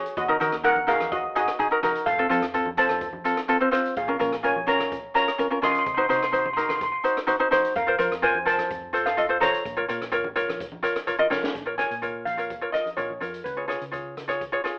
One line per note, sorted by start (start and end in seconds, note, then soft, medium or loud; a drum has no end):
0.00 0.14 F#4 medium
0.00 0.14 G#4 medium
0.00 0.14 C#5 medium
0.06 closed hi-hat medium
0.17 0.36 D#2 loud
0.17 0.61 F#4 medium
0.17 0.66 D#5 medium
0.17 kick loud
0.17 closed hi-hat medium
0.28 0.36 D#4 medium
0.28 0.36 F#4 medium
0.28 0.36 A#4 medium
0.28 low conga medium
0.40 0.50 D#3 medium
0.40 0.55 D#4 medium
0.40 0.55 F#4 medium
0.40 0.55 A#4 medium
0.40 closed hi-hat medium
0.40 high conga medium
0.52 1.27 D#2 medium
0.52 cross-stick medium
0.52 closed hi-hat medium
0.64 0.78 D#4 medium
0.64 0.79 F#4 medium
0.64 0.79 A#4 medium
0.64 0.87 A#4 medium
0.64 0.89 F#5 loud
0.64 kick medium
0.64 closed hi-hat medium
0.76 high conga medium
0.87 1.16 D#4 medium
0.87 1.16 F#4 medium
0.87 1.11 G#4 medium
0.87 1.16 A#4 medium
0.87 1.13 F5 medium
0.87 closed hi-hat medium
0.87 low conga medium
1.00 cross-stick medium
1.00 closed hi-hat medium
1.00 high conga medium
1.12 1.34 F#4 medium
1.12 1.35 D#5 medium
1.12 kick loud
1.12 closed hi-hat medium
1.35 1.50 D#4 medium
1.35 1.50 F#4 medium
1.35 1.80 F#4 medium
1.35 1.50 G#4 medium
1.35 1.80 D#5 medium
1.35 closed hi-hat medium
1.48 cross-stick medium
1.48 closed hi-hat medium
1.59 1.66 D#4 medium
1.59 1.67 F#4 medium
1.59 1.67 G#4 medium
1.59 kick medium
1.59 closed hi-hat medium
1.71 1.78 D#4 medium
1.71 1.78 F#4 medium
1.71 1.79 A#4 medium
1.83 2.04 D#4 medium
1.83 2.04 F#4 medium
1.83 2.05 A#4 medium
1.83 cross-stick medium
1.83 closed hi-hat medium
1.83 high conga medium
1.83 low conga medium
1.95 closed hi-hat medium
2.06 2.25 F2 medium
2.06 2.51 A4 medium
2.06 2.51 F5 loud
2.06 kick loud
2.06 closed hi-hat medium
2.18 2.26 C4 medium
2.18 2.26 F4 medium
2.18 2.26 A4 medium
2.18 low conga medium
2.29 2.40 F3 medium
2.29 2.44 C4 medium
2.29 2.45 F4 medium
2.29 2.45 A4 medium
2.29 closed hi-hat medium
2.29 high conga medium
2.42 3.17 F2 medium
2.42 cross-stick medium
2.42 closed hi-hat medium
2.54 2.68 C4 medium
2.54 2.68 F4 medium
2.54 2.69 A4 medium
2.54 kick medium
2.54 closed hi-hat medium
2.66 high conga medium
2.77 3.06 C4 medium
2.77 3.06 F4 medium
2.77 3.07 A4 medium
2.77 3.69 C5 medium
2.77 3.69 A5 loud
2.77 closed hi-hat medium
2.77 low conga medium
2.89 cross-stick medium
2.89 closed hi-hat medium
2.89 high conga medium
3.01 kick loud
3.01 closed hi-hat medium
3.13 high conga medium
3.24 3.39 C4 medium
3.24 3.39 F4 medium
3.24 3.40 A4 medium
3.24 closed hi-hat medium
3.37 cross-stick medium
3.37 closed hi-hat medium
3.48 3.56 C4 medium
3.48 3.56 F4 medium
3.48 3.56 A4 loud
3.48 kick medium
3.48 closed hi-hat medium
3.60 3.68 C4 medium
3.60 3.68 F4 medium
3.60 3.68 C5 medium
3.71 3.93 C4 medium
3.71 3.94 F4 medium
3.71 3.94 C5 medium
3.71 cross-stick medium
3.71 closed hi-hat medium
3.85 closed hi-hat medium
3.97 4.15 A#1 medium
3.97 4.41 G#4 medium
3.97 4.46 F5 medium
3.97 kick loud
3.97 closed hi-hat medium
4.08 4.15 C#4 medium
4.08 4.16 F4 medium
4.08 4.16 A#4 medium
4.08 low conga medium
4.19 4.30 A#2 medium
4.19 4.34 C#4 medium
4.19 4.34 F4 medium
4.19 4.34 A#4 medium
4.19 closed hi-hat medium
4.19 high conga medium
4.33 5.07 A#1 medium
4.33 cross-stick medium
4.33 closed hi-hat medium
4.43 4.58 C#4 medium
4.43 4.58 F4 medium
4.43 4.58 A#4 medium
4.43 4.67 C#5 medium
4.43 4.66 G#5 medium
4.43 kick medium
4.43 closed hi-hat medium
4.56 high conga medium
4.67 4.96 C#4 medium
4.67 4.96 F4 medium
4.67 4.96 A#4 medium
4.67 5.12 C#5 medium
4.67 5.14 A#5 loud
4.67 closed hi-hat medium
4.67 low conga medium
4.80 cross-stick medium
4.80 closed hi-hat medium
4.80 high conga medium
4.92 kick loud
4.92 closed hi-hat medium
5.14 5.29 C#4 medium
5.14 5.29 F4 medium
5.14 5.29 A#4 medium
5.14 5.60 C#5 medium
5.14 5.59 A#5 loud
5.14 closed hi-hat medium
5.28 cross-stick medium
5.28 closed hi-hat medium
5.38 5.46 C#4 medium
5.38 5.46 F4 medium
5.38 5.46 A#4 medium
5.38 kick medium
5.38 closed hi-hat medium
5.50 5.58 C#4 medium
5.50 5.58 F4 medium
5.50 5.58 A#4 medium
5.62 5.83 C#4 medium
5.62 5.84 F4 medium
5.62 5.84 A#4 medium
5.62 5.71 D#5 medium
5.62 5.70 C6 loud
5.62 cross-stick medium
5.62 closed hi-hat medium
5.62 high conga medium
5.62 low conga medium
5.72 5.78 C6 medium
5.72 closed hi-hat medium
5.79 5.85 C6 medium
5.86 6.05 C2 medium
5.86 kick loud
5.86 closed hi-hat medium
5.94 6.05 D#4 medium
5.94 6.05 F#4 medium
5.94 6.05 C5 medium
5.94 6.00 C6 medium
5.94 low conga medium
6.02 6.08 C6 medium
6.09 6.20 C3 medium
6.09 6.24 D#4 medium
6.09 6.24 F#4 medium
6.09 6.24 C5 medium
6.09 6.15 C6 medium
6.09 closed hi-hat medium
6.09 high conga medium
6.16 6.22 C6 medium
6.22 6.97 C2 medium
6.22 6.30 C6 medium
6.22 cross-stick medium
6.22 closed hi-hat medium
6.32 6.47 D#4 medium
6.32 6.47 F#4 medium
6.32 6.48 C5 medium
6.32 6.38 C6 medium
6.32 kick medium
6.32 closed hi-hat medium
6.39 6.45 C6 medium
6.46 6.52 C6 medium
6.46 high conga medium
6.53 6.85 D#4 medium
6.53 6.85 F#4 medium
6.53 6.86 A#4 medium
6.53 6.60 C6 medium
6.53 low conga medium
6.58 6.67 C6 medium
6.58 closed hi-hat medium
6.69 6.75 C6 medium
6.69 cross-stick loud
6.69 closed hi-hat medium
6.69 high conga medium
6.76 6.82 C6 medium
6.81 6.90 C6 medium
6.81 kick loud
6.81 closed hi-hat medium
6.92 6.98 C6 medium
7.04 7.19 D#4 medium
7.04 7.19 F#4 medium
7.04 7.19 C5 medium
7.04 closed hi-hat medium
7.17 cross-stick loud
7.17 closed hi-hat medium
7.27 7.35 D#4 medium
7.27 7.35 F#4 medium
7.27 7.35 C5 medium
7.27 kick medium
7.27 closed hi-hat medium
7.39 7.47 D#4 medium
7.39 7.47 F#4 medium
7.39 7.47 C5 loud
7.51 7.73 D#4 medium
7.51 7.73 F#4 medium
7.51 7.73 C5 loud
7.51 cross-stick medium
7.51 closed hi-hat medium
7.51 high conga medium
7.64 closed hi-hat medium
7.76 7.94 F2 loud
7.76 8.20 A#4 medium
7.76 8.25 F5 medium
7.76 kick loud
7.76 closed hi-hat medium
7.87 7.94 F4 medium
7.87 7.94 A#4 medium
7.87 7.95 C5 medium
7.87 low conga medium
7.99 8.09 F3 medium
7.99 8.13 F4 medium
7.99 8.13 A#4 medium
7.99 8.13 C5 medium
7.99 closed hi-hat medium
7.99 high conga medium
8.11 8.58 F2 medium
8.11 cross-stick medium
8.11 closed hi-hat medium
8.22 8.37 F4 medium
8.22 8.37 A#4 medium
8.22 8.37 C5 medium
8.22 8.35 C5 medium
8.22 8.34 G#5 loud
8.22 kick medium
8.22 closed hi-hat medium
8.34 high conga medium
8.45 8.70 F4 medium
8.45 8.70 A#4 medium
8.45 8.70 C5 medium
8.45 9.03 C5 medium
8.45 9.08 A5 loud
8.45 closed hi-hat medium
8.45 low conga medium
8.58 cross-stick medium
8.58 closed hi-hat medium
8.58 high conga medium
8.71 9.45 F2 loud
8.71 kick loud
8.71 closed hi-hat medium
8.93 9.08 F4 medium
8.93 9.08 A4 medium
8.93 9.08 C5 medium
8.93 closed hi-hat medium
9.06 9.40 A4 medium
9.06 9.42 F5 medium
9.06 cross-stick medium
9.06 closed hi-hat medium
9.17 9.25 F4 medium
9.17 9.25 A4 medium
9.17 9.25 D#5 medium
9.17 kick medium
9.17 closed hi-hat medium
9.29 9.36 F4 medium
9.29 9.37 A4 medium
9.29 9.37 C5 medium
9.40 9.62 F4 medium
9.40 9.62 A4 medium
9.40 9.63 C5 medium
9.40 11.28 C#5 medium
9.40 11.27 A#5 loud
9.40 cross-stick medium
9.40 closed hi-hat medium
9.40 high conga medium
9.40 low conga medium
9.54 closed hi-hat medium
9.65 9.84 A#1 medium
9.65 kick loud
9.65 closed hi-hat medium
9.77 9.84 F4 medium
9.77 9.84 A#4 medium
9.77 9.84 C#5 medium
9.88 9.99 A#2 medium
9.88 10.03 F4 medium
9.88 10.03 A#4 medium
9.88 10.03 C#5 medium
9.88 closed hi-hat medium
10.01 10.76 A#1 medium
10.01 cross-stick medium
10.01 closed hi-hat medium
10.12 10.26 F4 medium
10.12 10.27 A#4 medium
10.12 10.27 C#5 loud
10.12 kick medium
10.12 closed hi-hat medium
10.24 high conga medium
10.36 10.64 F4 medium
10.36 10.65 A#4 medium
10.36 10.65 C#5 medium
10.36 closed hi-hat medium
10.36 low conga medium
10.48 cross-stick medium
10.48 closed hi-hat medium
10.48 high conga medium
10.60 kick loud
10.60 closed hi-hat medium
10.72 high conga medium
10.83 10.98 F4 medium
10.83 10.98 A#4 medium
10.83 10.98 C#5 medium
10.83 closed hi-hat medium
10.96 cross-stick medium
10.96 closed hi-hat medium
11.07 11.15 F4 medium
11.07 11.14 A#4 medium
11.07 11.15 C#5 medium
11.07 kick medium
11.07 closed hi-hat medium
11.19 11.26 F4 medium
11.19 11.26 A#4 medium
11.19 11.26 D#5 loud
11.30 11.52 F4 medium
11.30 11.52 A#4 medium
11.30 11.53 C#5 medium
11.30 snare medium
11.30 high conga medium
11.30 low conga medium
11.44 snare loud
11.55 11.83 A#1 medium
11.55 kick medium
11.55 closed hi-hat medium
11.66 11.73 F4 medium
11.66 11.74 A#4 medium
11.66 11.74 C#5 medium
11.78 11.93 F4 medium
11.78 11.93 A#4 medium
11.78 11.93 C#5 medium
11.78 12.27 G#5 medium
11.78 cross-stick medium
11.78 closed hi-hat medium
11.78 low conga medium
11.91 12.66 A#2 medium
11.91 closed hi-hat soft
12.02 12.24 F4 medium
12.02 12.24 A#4 medium
12.02 12.24 C#5 medium
12.02 kick medium
12.02 closed hi-hat medium
12.02 low conga soft
12.25 12.75 F5 medium
12.25 closed hi-hat medium
12.25 high conga medium
12.37 12.52 F4 medium
12.37 12.52 A#4 medium
12.37 12.53 C#5 medium
12.37 closed hi-hat medium
12.50 kick medium
12.50 closed hi-hat medium
12.61 12.69 F4 medium
12.61 12.69 A#4 soft
12.61 12.69 C#5 medium
12.72 12.88 F4 medium
12.72 12.88 A#4 soft
12.72 12.83 D#5 medium
12.72 12.88 D#5 medium
12.72 cross-stick medium
12.72 closed hi-hat medium
12.85 closed hi-hat medium
12.85 high conga medium
12.97 13.17 A#1 medium
12.97 13.12 F4 medium
12.97 13.12 A#4 medium
12.97 13.46 C#5 medium
12.97 13.12 C#5 medium
12.97 kick medium
12.97 closed hi-hat soft
12.97 high conga medium
13.10 high conga medium
13.20 13.41 F2 medium
13.20 13.43 F4 medium
13.20 13.43 A#4 soft
13.20 13.43 C#5 medium
13.20 closed hi-hat medium
13.20 high conga medium
13.20 low conga medium
13.34 closed hi-hat medium
13.44 13.74 C#2 medium
13.44 14.13 B4 medium
13.44 kick medium
13.44 closed hi-hat medium
13.57 13.64 F4 medium
13.57 13.64 G#4 soft
13.57 13.65 C#5 medium
13.68 13.83 F4 medium
13.68 13.83 G#4 medium
13.68 13.83 C#5 medium
13.68 cross-stick medium
13.68 closed hi-hat medium
13.68 low conga medium
13.81 14.57 C#3 medium
13.81 closed hi-hat medium
13.91 14.14 F4 medium
13.91 14.14 G#4 medium
13.91 14.15 C#5 medium
13.91 kick medium
13.91 closed hi-hat medium
13.91 low conga medium
14.17 cross-stick medium
14.17 closed hi-hat medium
14.17 high conga medium
14.17 low conga medium
14.28 14.43 F4 medium
14.28 14.43 G#4 medium
14.28 14.43 C#5 medium
14.28 cross-stick medium
14.28 closed hi-hat medium
14.41 kick medium
14.41 closed hi-hat medium
14.52 14.60 F4 medium
14.52 14.60 G#4 medium
14.52 14.60 C#5 medium
14.64 14.79 F4 medium
14.64 14.79 G#4 medium
14.64 14.79 C#5 medium
14.64 cross-stick medium
14.64 closed hi-hat medium